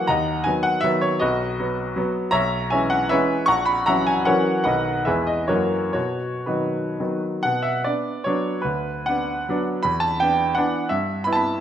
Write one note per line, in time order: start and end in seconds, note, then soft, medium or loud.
0.07 0.45 D#2 medium
0.07 0.44 D#5 medium
0.07 0.43 F#5 medium
0.07 0.46 A#5 medium
0.44 0.80 D#3 soft
0.44 0.81 F#3 soft
0.44 0.81 B3 soft
0.44 0.64 G#5 medium
0.63 0.83 F#5 medium
0.81 1.17 D#3 medium
0.81 1.17 F#3 medium
0.81 1.17 B3 medium
0.81 1.01 E5 loud
1.01 1.20 C#5 medium
1.19 1.58 B1 medium
1.19 2.11 F#4 medium
1.19 2.11 B4 medium
1.19 2.14 D#5 medium
1.60 1.94 F#3 soft
1.60 1.94 B3 medium
1.96 2.29 F#3 medium
1.96 2.30 B3 medium
2.31 2.71 B1 medium
2.31 2.69 C#5 medium
2.31 2.69 E5 medium
2.31 2.71 A#5 loud
2.70 3.08 E3 soft
2.70 3.08 G#3 soft
2.70 3.08 C#4 medium
2.70 2.91 C#5 medium
2.70 2.90 E5 medium
2.70 2.91 G#5 medium
2.90 3.10 F#5 medium
3.09 3.45 E3 medium
3.09 3.45 G#3 medium
3.09 3.45 C#4 medium
3.09 3.45 B4 medium
3.09 3.46 C#5 medium
3.09 3.48 E5 medium
3.46 3.86 A#1 medium
3.46 3.66 F#5 medium
3.46 3.65 A#5 medium
3.46 3.66 C#6 loud
3.66 3.86 B5 medium
3.86 4.23 E3 soft
3.86 4.23 F#3 soft
3.86 4.24 C#4 soft
3.86 4.06 E5 medium
3.86 4.06 F#5 medium
3.86 4.07 A#5 medium
4.07 4.26 G#5 medium
4.25 4.62 E3 medium
4.25 4.62 F#3 medium
4.25 4.63 C#4 medium
4.25 4.63 A#4 medium
4.25 4.63 C#5 medium
4.25 4.62 F#5 medium
4.64 5.05 B1 medium
4.64 5.03 D#3 soft
4.64 5.03 F#3 soft
4.64 5.03 B3 soft
4.64 5.03 B4 medium
4.64 5.03 D#5 medium
4.64 5.05 F#5 medium
5.05 5.50 E2 medium
5.05 5.46 E3 soft
5.05 5.47 G#3 soft
5.05 5.47 B3 soft
5.05 5.27 G#4 medium
5.05 5.27 B4 medium
5.05 5.28 E5 medium
5.27 5.49 D#5 medium
5.48 5.95 F#2 soft
5.48 5.92 E3 soft
5.48 5.93 F#3 soft
5.48 5.93 A#3 soft
5.48 5.92 F#4 medium
5.48 5.93 A#4 medium
5.48 5.91 C#5 medium
5.93 6.46 B2 soft
5.93 6.44 F#4 soft
5.93 6.47 C#5 medium
6.46 6.95 D#3 soft
6.46 6.96 F#3 soft
6.46 6.96 B3 soft
6.46 7.19 D#4 soft
6.46 7.19 F#4 soft
6.46 7.22 B4 soft
7.00 7.41 D#3 soft
7.00 7.41 F#3 soft
7.00 7.41 B3 soft
7.43 7.83 B2 medium
7.43 7.63 F#5 medium
7.62 7.84 E5 medium
7.84 8.21 B3 soft
7.84 8.22 D4 soft
7.84 8.24 D5 medium
8.24 8.60 F#3 soft
8.24 8.60 B3 soft
8.24 8.60 D4 medium
8.24 8.62 C#5 medium
8.62 9.07 D2 medium
8.62 9.07 B4 medium
9.06 9.44 B3 soft
9.06 9.44 D4 soft
9.06 9.65 F#5 medium
9.49 9.81 F#3 soft
9.49 9.81 B3 medium
9.49 9.81 D4 medium
9.83 10.20 E2 medium
9.83 10.01 B5 medium
10.00 10.20 A5 medium
10.20 10.54 B3 soft
10.20 10.54 D4 soft
10.20 10.57 G5 medium
10.55 10.88 E3 medium
10.55 10.88 B3 medium
10.55 10.88 D4 medium
10.55 10.90 F#5 medium
10.89 11.25 G2 medium
10.89 11.25 E5 medium
11.24 11.58 B3 soft
11.24 11.58 E4 medium
11.24 11.31 B5 medium
11.33 11.39 A5 medium
11.33 11.60 B5 medium